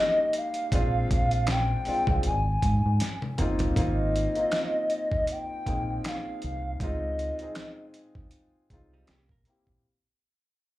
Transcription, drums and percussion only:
0.33 closed hi-hat
0.54 closed hi-hat
0.72 kick, closed hi-hat
1.11 kick, closed hi-hat
1.31 closed hi-hat
1.47 finger snap, snare, closed hi-hat
1.85 open hi-hat
2.07 kick
2.23 closed hi-hat
2.62 kick, closed hi-hat
3.00 snare, closed hi-hat
3.22 high tom
3.38 closed hi-hat, mid tom
3.59 closed hi-hat, floor tom
3.76 kick, closed hi-hat
4.16 closed hi-hat
4.35 closed hi-hat
4.52 finger snap, snare, closed hi-hat
4.90 closed hi-hat
5.12 kick
5.27 closed hi-hat
5.66 kick, closed hi-hat
6.04 finger snap, snare, closed hi-hat
6.42 closed hi-hat
6.80 kick, closed hi-hat
7.19 closed hi-hat
7.39 closed hi-hat
7.55 finger snap, snare, closed hi-hat
7.94 closed hi-hat
8.15 kick
8.31 closed hi-hat
8.70 kick, closed hi-hat
9.07 finger snap, snare, closed hi-hat
9.29 kick
9.45 closed hi-hat
9.67 kick

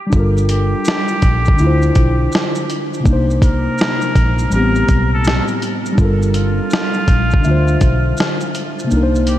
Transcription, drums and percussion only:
0.12 kick, shaker
0.37 shaker
0.49 closed hi-hat, shaker
0.85 snare, shaker
1.08 shaker
1.22 kick, closed hi-hat, shaker
1.45 kick, shaker
1.58 shaker
1.82 shaker
1.95 kick, closed hi-hat, shaker
2.32 snare, shaker
2.55 shaker
2.70 closed hi-hat, shaker
2.94 shaker
3.06 kick, shaker
3.30 shaker
3.42 kick, closed hi-hat, shaker
3.78 snare, shaker
4.01 shaker
4.15 kick, closed hi-hat, shaker
4.39 shaker
4.52 shaker
4.75 shaker
4.89 kick, closed hi-hat, shaker
5.24 snare, shaker
5.48 shaker
5.62 closed hi-hat, shaker
5.86 shaker
5.98 kick, shaker
6.22 shaker
6.34 closed hi-hat, shaker
6.70 snare, shaker
6.94 shaker
7.08 kick, closed hi-hat, shaker
7.31 kick, shaker
7.44 shaker
7.68 shaker
7.81 kick, closed hi-hat, shaker
8.17 snare, shaker
8.41 shaker
8.55 closed hi-hat, shaker
8.79 shaker
8.91 shaker
9.15 shaker
9.27 closed hi-hat, shaker

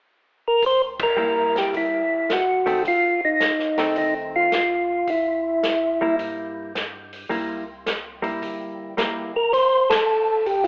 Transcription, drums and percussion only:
0.62 kick, open hi-hat
1.00 kick, ride
1.56 snare, open hi-hat
1.74 kick, open hi-hat
2.30 snare, closed hi-hat
2.67 open hi-hat
2.85 kick, open hi-hat
3.40 snare, closed hi-hat
3.59 snare
3.77 snare, open hi-hat
3.96 kick, open hi-hat
4.52 snare, closed hi-hat
5.07 kick, open hi-hat
5.63 snare, closed hi-hat
6.19 kick, open hi-hat
6.75 snare, closed hi-hat
7.13 open hi-hat
7.31 kick, open hi-hat
7.86 snare, closed hi-hat
8.24 open hi-hat
8.42 kick, open hi-hat
8.98 snare, closed hi-hat
9.53 kick, open hi-hat
9.90 snare, ride
10.46 open hi-hat
10.64 kick

